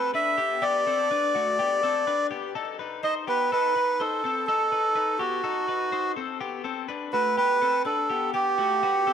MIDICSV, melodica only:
0, 0, Header, 1, 2, 480
1, 0, Start_track
1, 0, Tempo, 482703
1, 613, Time_signature, 4, 2, 24, 8
1, 9079, End_track
2, 0, Start_track
2, 0, Title_t, "Melodica"
2, 0, Program_c, 0, 22
2, 0, Note_on_c, 0, 71, 96
2, 111, Note_off_c, 0, 71, 0
2, 148, Note_on_c, 0, 76, 101
2, 619, Note_on_c, 0, 74, 115
2, 634, Note_off_c, 0, 76, 0
2, 2256, Note_off_c, 0, 74, 0
2, 3020, Note_on_c, 0, 75, 103
2, 3127, Note_off_c, 0, 75, 0
2, 3269, Note_on_c, 0, 71, 98
2, 3492, Note_off_c, 0, 71, 0
2, 3506, Note_on_c, 0, 71, 97
2, 3982, Note_on_c, 0, 69, 89
2, 3994, Note_off_c, 0, 71, 0
2, 4429, Note_off_c, 0, 69, 0
2, 4444, Note_on_c, 0, 69, 107
2, 5157, Note_on_c, 0, 66, 88
2, 5190, Note_off_c, 0, 69, 0
2, 6086, Note_off_c, 0, 66, 0
2, 7086, Note_on_c, 0, 71, 103
2, 7319, Note_off_c, 0, 71, 0
2, 7334, Note_on_c, 0, 71, 107
2, 7780, Note_off_c, 0, 71, 0
2, 7812, Note_on_c, 0, 69, 97
2, 8260, Note_off_c, 0, 69, 0
2, 8299, Note_on_c, 0, 67, 103
2, 9079, Note_off_c, 0, 67, 0
2, 9079, End_track
0, 0, End_of_file